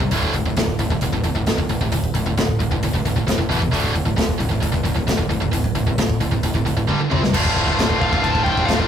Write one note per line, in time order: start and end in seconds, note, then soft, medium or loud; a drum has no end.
0.00 0.11 C3 medium
0.00 0.12 G3 medium
0.00 kick medium
0.11 0.31 D1 medium
0.11 0.33 D2 medium
0.11 0.33 A2 medium
0.11 0.34 D3 medium
0.11 kick medium
0.11 open hi-hat medium
0.23 kick medium
0.33 0.54 D1 medium
0.33 0.45 D2 medium
0.33 0.45 A2 medium
0.33 kick medium
0.33 open hi-hat medium
0.46 0.56 D2 medium
0.46 0.56 A2 medium
0.46 kick medium
0.57 0.77 D1 medium
0.57 0.77 D2 medium
0.57 0.77 A2 medium
0.57 kick medium
0.57 snare loud
0.57 open hi-hat medium
0.68 kick medium
0.79 0.99 D1 medium
0.79 0.90 D2 medium
0.79 0.89 A2 medium
0.79 kick medium
0.79 open hi-hat medium
0.90 1.01 D2 medium
0.90 1.01 A2 medium
0.90 kick medium
1.01 1.22 D1 medium
1.01 1.12 D2 medium
1.01 1.11 A2 medium
1.01 kick medium
1.01 open hi-hat medium
1.12 1.23 D2 medium
1.12 1.23 A2 medium
1.12 kick medium
1.24 1.44 D1 medium
1.24 1.34 D2 medium
1.24 1.34 A2 medium
1.24 kick medium
1.24 open hi-hat medium
1.35 1.46 D2 medium
1.35 1.46 A2 medium
1.35 kick medium
1.46 1.67 D1 medium
1.46 1.57 D2 medium
1.46 1.56 A2 medium
1.46 kick medium
1.46 snare loud
1.46 open hi-hat medium
1.57 1.69 D2 medium
1.57 1.69 A2 medium
1.57 kick medium
1.69 1.90 D1 medium
1.69 1.81 D2 medium
1.69 1.80 A2 medium
1.69 kick medium
1.69 open hi-hat medium
1.81 1.91 D2 medium
1.81 1.91 A2 medium
1.81 kick medium
1.92 2.12 D1 medium
1.92 2.12 D2 medium
1.92 2.13 A2 medium
1.92 kick medium
1.92 open hi-hat medium
2.04 kick medium
2.14 2.35 D1 medium
2.14 2.25 D2 medium
2.14 2.25 A2 medium
2.14 kick medium
2.14 open hi-hat medium
2.26 2.36 D2 medium
2.26 2.36 A2 medium
2.26 kick medium
2.37 2.57 D1 medium
2.37 2.58 D2 medium
2.37 2.58 A2 medium
2.37 kick medium
2.37 snare loud
2.37 open hi-hat medium
2.49 kick medium
2.59 2.80 D1 medium
2.59 2.70 D2 medium
2.59 2.70 A2 medium
2.59 kick medium
2.59 open hi-hat medium
2.71 2.82 D2 medium
2.71 2.82 A2 medium
2.71 kick medium
2.83 3.02 D1 medium
2.83 2.93 D2 medium
2.83 2.92 A2 medium
2.83 kick medium
2.83 open hi-hat medium
2.93 3.04 D2 medium
2.93 3.04 A2 medium
2.93 kick medium
3.05 3.25 D1 medium
3.05 3.15 D2 medium
3.05 3.15 A2 medium
3.05 kick medium
3.05 open hi-hat medium
3.16 3.26 D2 medium
3.16 3.26 A2 medium
3.16 kick medium
3.27 3.48 F1 medium
3.27 3.37 D2 medium
3.27 3.36 A2 medium
3.27 kick medium
3.27 snare medium
3.27 open hi-hat medium
3.38 3.49 D2 medium
3.38 3.49 A2 medium
3.38 kick medium
3.49 3.70 E1 medium
3.49 3.60 E2 medium
3.49 3.59 B2 medium
3.49 3.60 E3 medium
3.49 kick medium
3.49 open hi-hat medium
3.61 3.71 E2 medium
3.61 3.71 B2 medium
3.61 kick medium
3.72 3.93 D1 medium
3.72 3.93 D2 medium
3.72 3.93 A2 loud
3.72 3.94 D3 loud
3.72 kick medium
3.72 open hi-hat medium
3.84 kick medium
3.94 4.15 D1 medium
3.94 4.05 D2 medium
3.94 4.04 A2 medium
3.94 kick medium
3.94 open hi-hat medium
4.05 4.15 D2 medium
4.05 4.16 A2 medium
4.05 kick medium
4.16 4.37 D1 loud
4.16 4.37 D2 medium
4.16 4.38 A2 medium
4.16 kick medium
4.16 snare loud
4.16 open hi-hat medium
4.29 kick medium
4.39 4.60 D1 medium
4.39 4.50 D2 medium
4.39 4.50 A2 medium
4.39 kick medium
4.39 open hi-hat medium
4.51 4.60 D2 medium
4.51 4.61 A2 medium
4.51 kick medium
4.62 4.82 D1 medium
4.62 4.71 D2 medium
4.62 4.71 A2 medium
4.62 kick medium
4.62 open hi-hat medium
4.72 4.83 D2 medium
4.72 4.83 A2 medium
4.72 kick medium
4.84 5.05 D1 medium
4.84 4.95 D2 medium
4.84 4.95 A2 medium
4.84 kick medium
4.84 open hi-hat soft
4.96 5.06 D2 medium
4.96 5.06 A2 medium
4.96 kick medium
5.07 5.28 D1 medium
5.07 5.17 D2 medium
5.07 5.16 A2 medium
5.07 kick medium
5.07 snare loud
5.07 open hi-hat medium
5.17 5.28 D2 medium
5.17 5.28 A2 medium
5.17 kick medium
5.29 5.51 D1 medium
5.29 5.40 D2 medium
5.29 5.40 A2 medium
5.29 kick medium
5.29 open hi-hat soft
5.41 5.52 D2 medium
5.41 5.52 A2 medium
5.41 kick medium
5.53 5.73 D1 medium
5.53 5.73 D2 medium
5.53 5.73 A2 medium
5.53 kick medium
5.53 open hi-hat medium
5.64 kick medium
5.75 5.95 D1 medium
5.75 5.86 D2 medium
5.75 5.85 A2 medium
5.75 kick medium
5.75 open hi-hat medium
5.87 5.97 D2 medium
5.87 5.97 A2 medium
5.87 kick medium
5.98 6.18 D1 medium
5.98 6.18 D2 medium
5.98 6.19 A2 medium
5.98 kick medium
5.98 snare loud
5.98 open hi-hat medium
6.10 kick medium
6.21 6.41 D1 medium
6.21 6.31 D2 medium
6.21 6.31 A2 medium
6.21 kick medium
6.21 open hi-hat medium
6.32 6.42 D2 medium
6.32 6.42 A2 medium
6.32 kick medium
6.43 6.63 D1 medium
6.43 6.54 D2 medium
6.43 6.54 A2 medium
6.43 kick medium
6.43 open hi-hat medium
6.55 6.65 D2 medium
6.55 6.64 A2 medium
6.55 kick medium
6.65 6.86 D1 medium
6.65 6.76 D2 medium
6.65 6.76 A2 medium
6.65 kick medium
6.65 open hi-hat medium
6.77 6.88 D2 medium
6.77 6.88 A2 medium
6.77 kick medium
6.88 7.08 G1 medium
6.88 6.98 G2 medium
6.88 6.98 D3 loud
6.88 6.99 G3 loud
6.88 kick medium
6.88 high tom medium
7.01 7.11 G2 medium
7.01 7.11 D3 medium
7.11 7.31 C2 medium
7.11 7.21 C3 medium
7.11 7.21 G3 medium
7.11 7.21 C4 medium
7.11 mid tom medium
7.24 7.34 C3 medium
7.24 7.34 G3 medium
7.24 snare loud
7.33 7.53 D1 medium
7.33 8.88 D2 medium
7.33 8.88 A2 loud
7.33 8.88 D3 loud
7.33 7.41 A3 medium
7.33 7.43 F4 medium
7.33 kick medium
7.33 crash loud
7.33 crash medium
7.42 7.50 A3 medium
7.42 7.51 F4 medium
7.42 kick medium
7.51 7.56 A3 medium
7.51 7.57 F4 medium
7.56 7.76 D1 loud
7.56 7.64 A3 medium
7.56 7.65 F4 medium
7.56 kick medium
7.65 7.73 A3 medium
7.65 7.73 F4 medium
7.65 kick medium
7.74 7.81 A3 medium
7.74 7.81 F4 medium
7.79 7.98 D1 medium
7.79 7.88 A3 medium
7.79 7.88 F4 medium
7.79 kick medium
7.79 snare loud
7.79 crash medium
7.88 7.96 A3 medium
7.88 7.96 F4 medium
7.88 kick medium
7.96 8.03 A3 medium
7.96 8.03 F4 medium
8.01 8.21 D1 medium
8.01 8.11 A3 medium
8.01 8.11 F4 medium
8.01 8.24 F5 medium
8.01 kick medium
8.12 8.20 A3 medium
8.12 8.20 F4 medium
8.12 kick loud
8.20 8.63 D1 medium
8.20 8.27 A3 medium
8.20 8.28 F4 medium
8.20 8.44 A5 loud
8.20 kick medium
8.20 crash medium
8.27 8.34 A3 medium
8.27 8.36 F4 medium
8.34 8.42 A3 medium
8.34 8.44 F4 medium
8.34 kick medium
8.43 8.50 A3 medium
8.43 8.52 F4 medium
8.43 8.68 G5 loud
8.43 kick medium
8.51 8.59 A3 medium
8.51 8.59 F4 medium
8.58 8.66 A3 medium
8.58 8.66 F4 medium
8.58 kick medium
8.65 8.88 D1 medium
8.65 8.74 A3 medium
8.65 8.75 F4 medium
8.65 8.72 F5 loud
8.65 kick medium
8.65 crash medium
8.70 snare loud
8.74 8.82 A3 medium
8.74 8.81 F4 medium
8.80 8.88 A3 medium
8.80 8.88 F4 medium
8.80 kick medium